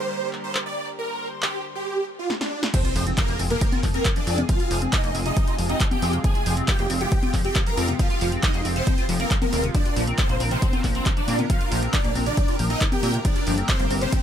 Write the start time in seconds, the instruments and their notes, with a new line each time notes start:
Already playing: analog synth pad D3 G3 A#3 G4 A#4
0.00 supersaw synth C5
0.33 clap
0.44 supersaw synth C5
0.55 clap
0.66 supersaw synth D5
0.98 supersaw synth A#4, analog synth pad C5
1.42 supersaw synth G4, clap
1.75 supersaw synth G4
2.19 supersaw synth F4
2.30 snare
2.41 supersaw synth D4, snare
2.63 snare
2.74 analog synth pad C3 F3 G#3 F4 G#4, acid bass F3, supersaw synth C4 C5, kick, closed hi-hat, crash, impact
2.85 acid bass F4, closed hi-hat
2.96 analog synth bass F1, acid bass F3, open hi-hat
3.07 acid bass C4, closed hi-hat
3.18 acid bass F3, supersaw synth A#3 A#4, kick, clap, closed hi-hat
3.29 analog synth bass F1, acid bass A#3, closed hi-hat
3.39 analog synth bass F1, acid bass C4, open hi-hat
3.50 acid bass C3, supersaw synth A#3 A#4, closed hi-hat
3.61 acid bass F3, kick, closed hi-hat
3.72 acid bass F4, closed hi-hat, high conga
3.83 analog synth bass F1, acid bass F3, kick, clap, open hi-hat
3.94 supersaw synth A#3 A#4, acid bass C4, closed hi-hat
4.05 acid bass F3, kick, clap, closed hi-hat
4.16 acid bass F3, supersaw synth D4 D5, closed hi-hat
4.27 analog synth bass F2, acid bass C4, open hi-hat
4.38 acid bass C3, closed hi-hat, high conga
4.49 acid bass F3, supersaw synth F4 F5, kick, closed hi-hat
4.60 acid bass F4, closed hi-hat
4.71 analog synth bass F1, acid bass F3, open hi-hat
4.82 acid bass C4, closed hi-hat
4.93 acid bass F3, supersaw synth D#4 D#5, kick, clap, closed hi-hat
5.04 analog synth bass F1, acid bass A#3, closed hi-hat
5.15 analog synth bass F1, acid bass C4, open hi-hat
5.26 acid bass C3, supersaw synth D#4 D#5, closed hi-hat
5.37 acid bass F3, kick, closed hi-hat
5.48 acid bass F4, closed hi-hat
5.58 analog synth bass F1, acid bass F3, open hi-hat
5.69 acid bass C4, supersaw synth D#4 D#5, closed hi-hat
5.80 acid bass F3, kick, clap, closed hi-hat
5.91 acid bass F3, supersaw synth G4 G5, closed hi-hat, high conga
6.02 analog synth bass F2, acid bass C4, open hi-hat
6.13 acid bass C3, closed hi-hat
6.24 acid bass F3, analog synth pad G4, supersaw synth G#4 G#5, kick, closed hi-hat
6.35 acid bass F4, closed hi-hat
6.46 analog synth bass F1, acid bass F3, open hi-hat
6.57 acid bass C4, closed hi-hat
6.68 acid bass F3, supersaw synth G4 G5, kick, clap, closed hi-hat
6.79 analog synth bass F1, acid bass A#3, closed hi-hat
6.90 analog synth bass F1, acid bass C4, open hi-hat
7.01 acid bass C3, supersaw synth G4 G5, closed hi-hat
7.12 acid bass F3, kick, closed hi-hat
7.23 acid bass F4, closed hi-hat, high conga
7.34 analog synth bass F1, acid bass F3, kick, clap, open hi-hat
7.45 acid bass C4, supersaw synth G4 G5, closed hi-hat
7.55 acid bass F3, kick, clap, closed hi-hat
7.66 acid bass F3, supersaw synth A#4 A#5, closed hi-hat
7.77 analog synth bass F2, acid bass C4, open hi-hat
7.88 acid bass C3, closed hi-hat, high conga
7.99 acid bass F3, supersaw synth F4 F5, kick, closed hi-hat
8.10 acid bass F4, closed hi-hat
8.21 analog synth bass F1, acid bass F3, open hi-hat
8.32 acid bass C4, closed hi-hat
8.43 acid bass F3, supersaw synth D#4 D#5, kick, clap, closed hi-hat
8.54 analog synth bass F1, acid bass A#3, closed hi-hat
8.65 analog synth bass F1, acid bass C4, open hi-hat
8.76 acid bass C3, supersaw synth C4 C5, closed hi-hat
8.87 acid bass F3, kick, closed hi-hat
8.98 acid bass F4, closed hi-hat
9.09 analog synth bass F1, acid bass F3, open hi-hat
9.20 supersaw synth A#3 A#4, acid bass C4, closed hi-hat
9.31 acid bass F3, kick, clap, closed hi-hat
9.42 acid bass F3, supersaw synth A#3 A#4, closed hi-hat, high conga
9.53 analog synth bass D#1, acid bass C4, open hi-hat
9.64 acid bass C3, closed hi-hat
9.75 analog synth pad D3 A#3 A#4, acid bass F3, supersaw synth D4 D5, kick, closed hi-hat
9.86 acid bass F4, closed hi-hat
9.96 analog synth bass A#1, acid bass F3, open hi-hat
10.07 acid bass C4, closed hi-hat
10.18 acid bass F3, supersaw synth C4 C5, kick, clap, closed hi-hat
10.29 analog synth bass A#1, acid bass A#3, closed hi-hat
10.40 analog synth bass A#1, acid bass C4, open hi-hat
10.51 acid bass C3, supersaw synth C4 C5, closed hi-hat
10.62 acid bass F3, kick, closed hi-hat
10.73 acid bass F4, closed hi-hat, high conga
10.84 analog synth bass A#1, acid bass F3, kick, clap, open hi-hat
10.95 supersaw synth C4 C5, acid bass C4, closed hi-hat
11.06 acid bass F3, kick, clap, closed hi-hat
11.17 acid bass F3, supersaw synth D4 D5, closed hi-hat
11.28 analog synth bass A#2, acid bass C4, open hi-hat
11.39 acid bass C3, closed hi-hat, high conga
11.50 acid bass F3, supersaw synth F4 F5, analog synth pad G4, kick, closed hi-hat
11.61 acid bass F4, closed hi-hat
11.72 analog synth bass A#1, acid bass F3, open hi-hat
11.83 acid bass C4, closed hi-hat
11.94 acid bass F3, supersaw synth D4 D5, kick, clap, closed hi-hat
12.04 analog synth bass A#1, acid bass A#3, closed hi-hat
12.15 analog synth bass A#1, acid bass C4, open hi-hat
12.26 acid bass C3, supersaw synth D4 D5, closed hi-hat
12.37 acid bass F3, kick, closed hi-hat
12.48 acid bass F4, closed hi-hat
12.59 analog synth bass A#1, acid bass F3, open hi-hat
12.70 acid bass C4, supersaw synth D#4 D#5, closed hi-hat
12.81 acid bass F3, kick, clap, closed hi-hat
12.92 acid bass F3, supersaw synth G4 G5, closed hi-hat, high conga
13.03 analog synth bass A#2, acid bass C4, open hi-hat
13.14 acid bass C3, closed hi-hat
13.25 analog synth pad D3 G3, acid bass F3, supersaw synth D4 D5, kick, closed hi-hat
13.36 acid bass F4, closed hi-hat
13.47 analog synth bass G1, acid bass F3, open hi-hat
13.58 acid bass C4, closed hi-hat
13.69 acid bass F3, supersaw synth C4 C5, kick, clap, closed hi-hat
13.80 analog synth bass G1, acid bass A#3, closed hi-hat
13.91 analog synth bass G1, acid bass C4, open hi-hat
14.02 acid bass C3, supersaw synth C4 C5, closed hi-hat
14.12 acid bass F3, kick, closed hi-hat